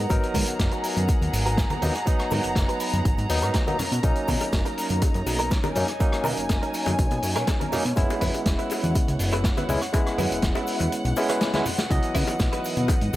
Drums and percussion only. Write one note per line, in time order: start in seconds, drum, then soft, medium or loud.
0.09 kick loud
0.09 closed hi-hat medium
0.09 cabasa soft
0.23 closed hi-hat soft
0.23 cabasa soft
0.34 kick medium
0.34 open hi-hat loud
0.34 high conga loud
0.34 cabasa medium
0.47 closed hi-hat medium
0.47 cabasa soft
0.59 kick loud
0.59 snare loud
0.59 closed hi-hat medium
0.59 cabasa medium
0.71 closed hi-hat soft
0.71 cabasa soft
0.83 open hi-hat loud
0.83 cabasa medium
0.96 closed hi-hat medium
0.96 high conga medium
0.96 cabasa soft
1.08 kick loud
1.08 closed hi-hat medium
1.08 cabasa soft
1.22 closed hi-hat soft
1.22 cabasa soft
1.33 open hi-hat loud
1.33 cabasa medium
1.46 closed hi-hat medium
1.46 cabasa soft
1.57 kick loud
1.57 snare loud
1.57 closed hi-hat medium
1.57 cabasa soft
1.70 closed hi-hat soft
1.70 high conga loud
1.70 cabasa soft
1.82 open hi-hat loud
1.82 low conga medium
1.82 cabasa medium
1.95 cross-stick medium
1.95 closed hi-hat medium
1.95 cabasa soft
2.07 kick loud
2.07 closed hi-hat medium
2.07 cabasa medium
2.19 cross-stick medium
2.19 closed hi-hat soft
2.19 cabasa soft
2.31 open hi-hat loud
2.31 high conga medium
2.31 cabasa medium
2.44 closed hi-hat medium
2.44 cabasa soft
2.55 kick loud
2.55 snare loud
2.55 closed hi-hat medium
2.55 cabasa medium
2.69 closed hi-hat soft
2.69 cabasa soft
2.80 open hi-hat medium
2.80 cabasa medium
2.93 closed hi-hat medium
2.93 high conga medium
2.93 cabasa soft
3.05 kick loud
3.05 closed hi-hat medium
3.05 cabasa soft
3.18 closed hi-hat soft
3.18 cabasa soft
3.29 open hi-hat loud
3.29 cabasa medium
3.42 cross-stick medium
3.42 closed hi-hat medium
3.42 cabasa soft
3.54 kick loud
3.54 snare loud
3.54 closed hi-hat medium
3.54 cabasa soft
3.67 closed hi-hat soft
3.67 high conga medium
3.67 cabasa soft
3.79 cross-stick medium
3.79 open hi-hat loud
3.79 low conga medium
3.79 cabasa medium
3.92 closed hi-hat medium
3.92 cabasa soft
4.03 kick loud
4.03 closed hi-hat medium
4.03 high bongo soft
4.03 cabasa medium
4.15 closed hi-hat soft
4.15 cabasa soft
4.28 kick medium
4.28 open hi-hat loud
4.28 high conga medium
4.28 cabasa medium
4.40 closed hi-hat medium
4.40 high bongo medium
4.40 cabasa soft
4.53 kick loud
4.53 snare loud
4.53 closed hi-hat medium
4.53 cabasa medium
4.65 closed hi-hat soft
4.65 high bongo soft
4.65 cabasa soft
4.77 open hi-hat medium
4.77 cabasa medium
4.89 closed hi-hat medium
4.89 high conga medium
4.89 cabasa soft
5.02 kick loud
5.02 closed hi-hat medium
5.02 high bongo medium
5.02 cabasa soft
5.14 closed hi-hat soft
5.14 cabasa soft
5.26 open hi-hat loud
5.26 high bongo soft
5.26 cabasa medium
5.39 closed hi-hat medium
5.39 cabasa soft
5.51 kick loud
5.51 snare medium
5.51 closed hi-hat medium
5.51 cabasa soft
5.64 closed hi-hat soft
5.64 high bongo medium
5.64 high conga medium
5.64 cabasa soft
5.75 open hi-hat loud
5.75 low conga medium
5.75 cabasa medium
5.88 cross-stick medium
5.88 closed hi-hat medium
5.88 high bongo soft
5.88 cabasa soft
6.00 kick loud
6.00 closed hi-hat medium
6.00 cabasa medium
6.12 cross-stick medium
6.12 closed hi-hat soft
6.12 cabasa soft
6.24 open hi-hat loud
6.24 high bongo medium
6.24 high conga medium
6.24 cabasa loud
6.37 closed hi-hat medium
6.37 cabasa soft
6.49 kick loud
6.49 snare loud
6.49 closed hi-hat medium
6.49 high bongo medium
6.49 cabasa medium
6.62 closed hi-hat soft
6.62 cabasa soft
6.74 open hi-hat medium
6.74 cabasa medium
6.86 closed hi-hat medium
6.86 high bongo medium
6.86 high conga medium
6.86 cabasa soft
6.98 kick loud
6.98 closed hi-hat medium
6.98 cabasa soft
7.11 closed hi-hat soft
7.11 high bongo medium
7.11 cabasa soft
7.22 open hi-hat loud
7.22 cabasa medium
7.35 cross-stick medium
7.35 closed hi-hat medium
7.35 cabasa soft
7.47 kick loud
7.47 snare loud
7.47 closed hi-hat medium
7.47 high bongo medium
7.47 cabasa medium
7.61 closed hi-hat soft
7.61 high conga medium
7.61 cabasa soft
7.72 cross-stick medium
7.72 open hi-hat loud
7.72 high bongo soft
7.72 low conga medium
7.72 cabasa medium
7.84 closed hi-hat medium
7.84 cabasa soft
7.96 kick loud
7.96 closed hi-hat medium
7.96 cabasa soft
8.10 closed hi-hat soft
8.10 high bongo medium
8.10 cabasa soft
8.21 kick medium
8.21 open hi-hat loud
8.21 high conga medium
8.21 cabasa medium
8.34 closed hi-hat medium
8.34 high bongo medium
8.34 cabasa soft
8.45 kick loud
8.45 snare loud
8.45 closed hi-hat medium
8.45 cabasa medium
8.59 closed hi-hat soft
8.59 cabasa soft
8.70 open hi-hat medium
8.70 high bongo medium
8.70 cabasa medium
8.84 closed hi-hat medium
8.84 high conga medium
8.84 cabasa soft
8.95 kick loud
8.95 closed hi-hat medium
8.95 high bongo soft
8.95 cabasa medium
9.08 closed hi-hat soft
9.08 cabasa soft
9.19 open hi-hat loud
9.19 cabasa medium
9.33 closed hi-hat medium
9.33 high bongo medium
9.33 cabasa soft
9.44 kick loud
9.44 snare loud
9.44 closed hi-hat medium
9.44 cabasa medium
9.57 closed hi-hat soft
9.57 high bongo medium
9.57 high conga medium
9.57 cabasa soft
9.69 open hi-hat medium
9.69 low conga medium
9.69 cabasa loud
9.81 cross-stick medium
9.81 closed hi-hat medium
9.81 cabasa soft
9.93 kick loud
9.93 closed hi-hat medium
9.93 high bongo medium
9.93 cabasa medium
10.06 cross-stick medium
10.06 closed hi-hat soft
10.06 cabasa soft
10.18 open hi-hat loud
10.18 high bongo soft
10.18 high conga medium
10.18 cabasa medium
10.32 closed hi-hat medium
10.32 cabasa soft
10.42 kick loud
10.42 snare loud
10.42 closed hi-hat medium
10.42 cabasa medium
10.55 closed hi-hat soft
10.55 high bongo medium
10.55 cabasa soft
10.67 open hi-hat medium
10.67 cabasa medium
10.80 closed hi-hat medium
10.80 high bongo medium
10.80 high conga medium
10.80 cabasa soft
10.92 closed hi-hat medium
10.92 cabasa soft
11.04 closed hi-hat soft
11.04 cabasa soft
11.16 open hi-hat loud
11.16 high bongo medium
11.16 cabasa medium
11.29 cross-stick medium
11.29 closed hi-hat medium
11.29 cabasa soft
11.41 snare loud
11.41 closed hi-hat medium
11.41 high bongo medium
11.41 cabasa soft
11.53 snare medium
11.53 closed hi-hat soft
11.53 high conga medium
11.53 cabasa soft
11.66 open hi-hat medium
11.66 low conga medium
11.66 cabasa medium
11.78 snare loud
11.78 closed hi-hat medium
11.78 high bongo medium
11.78 cabasa soft
11.91 kick loud
11.91 closed hi-hat medium
11.91 high bongo medium
11.91 cabasa soft
12.02 closed hi-hat soft
12.02 cabasa soft
12.14 kick medium
12.14 open hi-hat loud
12.14 high conga medium
12.14 cabasa medium
12.27 closed hi-hat medium
12.27 high bongo medium
12.27 cabasa soft
12.39 kick loud
12.39 snare loud
12.39 closed hi-hat medium
12.39 cabasa medium
12.52 closed hi-hat soft
12.52 high bongo medium
12.52 cabasa soft
12.64 open hi-hat medium
12.64 cabasa medium
12.77 closed hi-hat medium
12.77 high conga medium
12.77 cabasa soft
12.88 kick loud
12.88 closed hi-hat medium
12.88 high bongo medium
12.88 cabasa soft
13.01 closed hi-hat soft
13.01 cabasa soft